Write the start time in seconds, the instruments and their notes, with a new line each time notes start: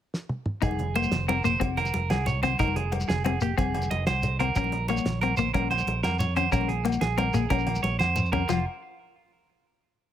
0.14 snare
0.29 high tom
0.46 mid tom
0.62 fingered electric bass F1, clean electric guitar D#4 G#4, kick, closed hi-hat, muted conga, low agogo, shekere
0.71 high conga
0.79 closed hi-hat, low conga
0.95 clean electric guitar A#3 C5, closed hi-hat, muted conga, low agogo
1.03 high conga, shekere
1.11 fingered electric bass F1, snare, closed hi-hat, low conga, shekere
1.28 clean electric guitar C4 A#4, closed hi-hat, muted conga, high conga, low conga, low agogo
1.44 fingered electric bass F1, clean electric guitar A#3 C5, closed hi-hat, low conga, shekere
1.60 fingered electric bass F1, clean electric guitar C4, muted clean electric guitar stroke, kick, closed hi-hat, muted conga, high conga, low agogo, shekere
1.70 low conga
1.77 clean electric guitar A#4, closed hi-hat, low conga, low agogo
1.85 high conga, shekere
1.94 fingered electric bass F1, closed hi-hat, muted conga, low conga
2.10 fingered electric bass C2, clean electric guitar G#4, snare, closed hi-hat, high conga, low conga, low agogo
2.26 clean electric guitar C#5, closed hi-hat, muted conga, shekere
2.43 clean electric guitar C4 C5, closed hi-hat, high conga, low conga, low agogo
2.51 low conga
2.59 fingered electric bass F1, clean electric guitar D#4 A#4, kick, closed hi-hat, muted conga, low agogo, shekere
2.68 high conga
2.76 clean electric guitar G#4, closed hi-hat, low conga
2.92 muted clean electric guitar stroke, closed hi-hat, muted conga, low agogo
3.00 high conga, shekere
3.08 fingered electric bass F1, clean electric guitar G#4, snare, closed hi-hat, low conga, shekere
3.24 clean electric guitar C4 G#4, closed hi-hat, muted conga, high conga, low conga, low agogo
3.41 fingered electric bass F1, clean electric guitar A#3 G4, closed hi-hat, shekere
3.57 fingered electric bass F1, clean electric guitar C4 G#4, kick, closed hi-hat, muted conga, high conga, low agogo, shekere
3.67 low conga
3.74 closed hi-hat, low conga, low agogo
3.82 high conga, shekere
3.91 fingered electric bass F1, clean electric guitar D#5, closed hi-hat, muted conga, low conga
4.07 fingered electric bass C2, clean electric guitar C5, snare, closed hi-hat, high conga, low conga, low agogo
4.22 closed hi-hat, muted conga, shekere
4.39 clean electric guitar C4 A#4, closed hi-hat, low conga, low agogo
4.48 low conga
4.56 fingered electric bass A#1, clean electric guitar C#4 A#4, kick, closed hi-hat, muted conga, low agogo, shekere
4.64 high conga
4.72 closed hi-hat, low conga
4.88 clean electric guitar A#3 C#5, closed hi-hat, muted conga, low agogo
4.97 high conga, shekere
5.05 fingered electric bass A#1, snare, closed hi-hat, low conga, shekere
5.21 clean electric guitar C4 A#4, closed hi-hat, high conga, low conga, low agogo
5.37 fingered electric bass A#1, clean electric guitar A#3 C5, closed hi-hat, low conga, shekere
5.54 fingered electric bass A#1, clean electric guitar C#4 A#4, kick, closed hi-hat, muted conga, high conga, low agogo, shekere
5.62 low conga
5.71 clean electric guitar C5, closed hi-hat, low conga, low agogo
5.78 high conga, shekere
5.87 fingered electric bass A#1, closed hi-hat, muted conga, low conga
6.03 fingered electric bass F2, clean electric guitar A#4, snare, closed hi-hat, high conga, low conga, low agogo
6.19 clean electric guitar C#5, closed hi-hat, muted conga, shekere
6.36 clean electric guitar C#4 C5, closed hi-hat, low conga, low agogo
6.45 low conga
6.52 fingered electric bass A#1, clean electric guitar C#4 A#4, kick, closed hi-hat, muted conga, low agogo, shekere
6.61 high conga, low conga
6.68 clean electric guitar G#4, closed hi-hat, low conga
6.85 clean electric guitar A#3, closed hi-hat, muted conga, low agogo
6.92 high conga, low conga, shekere
7.01 fingered electric bass A#1, clean electric guitar G#4, snare, closed hi-hat, low conga
7.18 clean electric guitar C4 A#4, closed hi-hat, muted conga, high conga, low agogo
7.34 fingered electric bass A#1, clean electric guitar A#3 G#4, snare, closed hi-hat, low conga, shekere
7.50 fingered electric bass A#1, clean electric guitar C#4 A#4, kick, closed hi-hat, muted conga, high conga, low agogo
7.59 low conga, shekere
7.67 closed hi-hat, low conga, low agogo
7.75 high conga, shekere
7.83 fingered electric bass A#1, clean electric guitar C#5, closed hi-hat, muted conga
7.92 low conga
7.99 fingered electric bass F2, clean electric guitar C5, snare, high conga, low conga, low agogo
8.16 mid tom, muted conga, shekere
8.25 shekere
8.32 clean electric guitar C#4 A#4, floor tom, high conga, low conga, low agogo
8.41 low conga
8.49 fingered electric bass F1, clean electric guitar F3 F4, snare, crash, muted conga, low agogo, shekere